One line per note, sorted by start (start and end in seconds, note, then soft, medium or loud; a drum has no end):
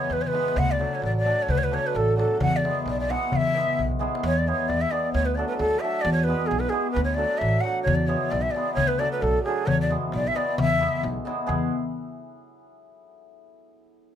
0.00 0.32 E3 medium
0.00 0.32 G#3 medium
0.00 0.13 C#5 loud
0.00 darbuka tek soft
0.10 0.38 E2 loud
0.10 0.22 B4 medium
0.10 darbuka tek medium
0.21 0.28 C#5 medium
0.21 darbuka dum medium
0.27 0.59 B4 loud
0.33 0.62 E3 medium
0.33 0.62 G#3 medium
0.33 0.54 B3 medium
0.33 0.54 E4 medium
0.33 0.54 G#4 medium
0.33 darbuka tek medium
0.48 darbuka tek medium
0.56 0.84 D2 loud
0.56 0.72 F#5 loud
0.56 darbuka dum loud
0.70 0.95 D5 medium
0.70 darbuka tek soft
0.79 1.23 F#3 medium
0.79 1.00 A3 medium
0.79 1.00 D4 medium
0.79 1.00 F#4 medium
0.79 1.00 A4 medium
0.79 darbuka tek medium
0.94 1.03 C#5 medium
1.02 1.30 A1 medium
1.02 1.16 D5 loud
1.02 darbuka tek medium
1.17 1.43 D5 loud
1.24 1.70 F#3 medium
1.24 1.46 A3 medium
1.24 1.46 D4 medium
1.24 1.46 F#4 medium
1.24 1.46 A4 medium
1.24 darbuka tek medium
1.42 1.51 C#5 medium
1.48 1.76 D2 loud
1.48 1.59 B4 loud
1.48 darbuka dum loud
1.57 1.65 C#5 loud
1.63 1.75 B4 medium
1.63 darbuka tek soft
1.71 2.15 F#3 medium
1.71 1.92 A3 medium
1.71 1.92 D4 medium
1.71 1.92 F#4 medium
1.71 1.92 A4 medium
1.71 1.88 C#5 loud
1.71 darbuka tek medium
1.85 1.97 B4 medium
1.85 darbuka tek soft
1.95 2.22 A1 medium
1.95 2.17 A4 medium
1.95 darbuka tek medium
2.16 2.46 F#3 medium
2.16 2.37 A3 medium
2.16 2.38 D4 medium
2.16 2.38 F#4 medium
2.16 2.39 A4 medium
2.16 2.38 A4 medium
2.16 darbuka tek medium
2.32 darbuka tek soft
2.40 2.68 E2 loud
2.40 2.57 F#5 loud
2.40 darbuka dum loud
2.56 2.78 D5 medium
2.64 3.08 E3 medium
2.64 3.08 G#3 medium
2.64 2.84 B3 medium
2.64 2.84 E4 medium
2.64 2.84 G#4 medium
2.64 darbuka tek medium
2.77 darbuka tek soft
2.86 3.13 B1 medium
2.86 2.99 D5 medium
2.86 darbuka tek medium
2.99 3.11 D5 medium
3.09 3.54 E3 medium
3.09 3.55 G#3 medium
3.09 3.30 B3 medium
3.09 3.30 E4 medium
3.09 3.30 G#4 medium
3.09 3.37 F#5 loud
3.09 darbuka tek medium
3.24 darbuka tek soft
3.32 3.60 E2 loud
3.32 3.80 E5 loud
3.32 darbuka dum loud
3.55 3.98 E3 medium
3.55 3.99 G#3 medium
3.55 3.75 B3 medium
3.55 3.76 E4 medium
3.55 3.76 G#4 medium
3.55 darbuka tek medium
3.68 darbuka dum medium
3.78 4.06 B1 medium
3.78 darbuka dum medium
3.91 darbuka dum medium
3.99 4.29 E3 medium
3.99 4.29 G#3 medium
3.99 4.20 B3 medium
3.99 4.21 E4 medium
3.99 4.21 G#4 medium
3.99 darbuka tek medium
4.15 darbuka tek medium
4.23 4.51 E2 loud
4.23 4.39 C#5 loud
4.37 4.49 D5 medium
4.46 4.90 E3 medium
4.46 4.90 G#3 medium
4.46 4.67 B3 medium
4.46 4.67 E4 medium
4.46 4.67 G#4 medium
4.46 4.69 C#5 medium
4.68 4.83 E2 loud
4.68 4.82 D5 medium
4.81 4.92 E5 loud
4.91 5.20 E3 medium
4.91 5.20 G#3 medium
4.91 5.12 B3 medium
4.91 5.12 E4 medium
4.91 5.12 G#4 medium
4.91 5.12 D5 medium
5.12 5.42 D2 loud
5.12 5.26 C#5 loud
5.25 5.36 B4 medium
5.35 5.81 F#3 medium
5.35 5.57 A3 medium
5.35 5.57 D4 medium
5.35 5.58 F#4 medium
5.35 5.46 D5 medium
5.39 5.58 A4 medium
5.47 5.57 B4 medium
5.57 5.73 D2 loud
5.57 5.81 A4 loud
5.79 6.11 F#3 medium
5.79 6.02 A3 medium
5.79 6.02 E5 loud
5.84 6.03 D4 medium
5.84 6.03 F#4 medium
5.84 6.03 A4 medium
6.01 6.32 E2 loud
6.01 6.12 D5 loud
6.12 6.25 C#5 medium
6.23 6.48 B4 loud
6.27 6.71 E3 medium
6.27 6.71 G#3 medium
6.27 6.48 B3 medium
6.27 6.49 E4 medium
6.27 6.49 G#4 medium
6.46 6.61 G#4 loud
6.51 6.65 B1 loud
6.59 6.70 B4 loud
6.69 7.02 E3 medium
6.69 7.02 G#3 medium
6.69 6.92 B3 medium
6.69 6.93 E4 medium
6.69 6.90 G#4 medium
6.73 6.93 G#4 medium
6.90 7.03 B4 loud
6.96 7.24 D2 loud
7.04 7.15 C#5 medium
7.14 7.62 F#3 medium
7.14 7.37 A3 medium
7.14 7.38 D4 medium
7.14 7.39 D5 loud
7.18 7.38 F#4 medium
7.18 7.38 A4 medium
7.37 7.62 E5 loud
7.41 7.55 A1 loud
7.60 7.92 F#3 medium
7.60 7.84 A3 medium
7.60 7.82 F#5 loud
7.64 7.84 D4 medium
7.64 7.84 F#4 medium
7.64 7.84 A4 medium
7.82 7.96 C#5 loud
7.86 8.14 E2 loud
7.86 darbuka dum medium
7.94 8.08 D5 loud
8.00 darbuka tek soft
8.06 8.55 E3 medium
8.06 8.55 G#3 medium
8.06 8.29 B3 medium
8.06 8.29 E4 medium
8.06 8.29 G#4 medium
8.06 8.31 C#5 loud
8.06 darbuka tek medium
8.30 8.46 B1 loud
8.30 8.42 D5 loud
8.30 darbuka tek medium
8.41 8.52 E5 medium
8.41 darbuka tek soft
8.50 8.73 D5 medium
8.55 8.83 E3 medium
8.55 8.83 G#3 medium
8.55 8.75 B3 medium
8.55 8.75 E4 medium
8.55 8.76 G#4 medium
8.55 darbuka tek medium
8.73 9.04 D2 loud
8.73 8.89 C#5 loud
8.73 darbuka dum medium
8.87 9.00 B4 loud
8.98 9.45 F#3 medium
8.98 9.19 A3 medium
8.98 9.19 D4 medium
8.98 9.20 F#4 medium
8.98 9.20 A4 medium
8.98 9.11 D5 loud
8.98 darbuka tek medium
9.11 9.23 B4 medium
9.21 9.36 B1 loud
9.21 9.43 A4 loud
9.21 darbuka tek medium
9.36 darbuka tek soft
9.43 9.73 F#3 medium
9.43 9.66 A3 medium
9.43 9.66 D4 medium
9.43 9.68 G#4 loud
9.43 darbuka tek medium
9.48 9.66 F#4 medium
9.48 9.66 A4 medium
9.66 9.94 E2 loud
9.66 9.80 C#5 loud
9.66 darbuka dum loud
9.81 9.90 D5 medium
9.81 darbuka tek soft
9.89 10.33 E3 medium
9.89 10.33 G#3 medium
9.89 10.10 B3 medium
9.89 10.10 E4 medium
9.89 10.10 G#4 medium
9.89 darbuka tek medium
10.03 darbuka tek soft
10.12 10.27 B1 loud
10.12 10.28 D5 loud
10.12 darbuka tek medium
10.26 10.37 E5 loud
10.26 darbuka tek soft
10.34 10.63 E3 medium
10.34 10.63 G#3 medium
10.34 10.55 B3 medium
10.34 10.55 E4 medium
10.34 10.55 G#4 medium
10.34 10.58 D5 medium
10.34 darbuka tek medium
10.58 10.85 E2 loud
10.58 11.01 E5 loud
10.58 darbuka dum loud
10.73 darbuka tek soft
10.79 11.24 E3 medium
10.79 11.25 G#3 medium
10.79 11.00 B3 medium
10.79 11.00 E4 medium
10.79 11.00 G#4 medium
10.83 darbuka tek medium
11.03 11.17 B1 loud
11.03 darbuka tek medium
11.17 darbuka tek soft
11.25 11.54 E3 medium
11.25 11.45 G#3 medium
11.25 11.46 B3 medium
11.25 11.46 E4 medium
11.25 11.46 G#4 medium
11.25 darbuka tek medium
11.39 darbuka tek soft
11.47 11.70 E2 loud
11.47 11.69 G#3 medium
11.47 11.69 B3 medium
11.47 11.69 E4 medium
11.47 11.69 G#4 loud
11.47 darbuka dum medium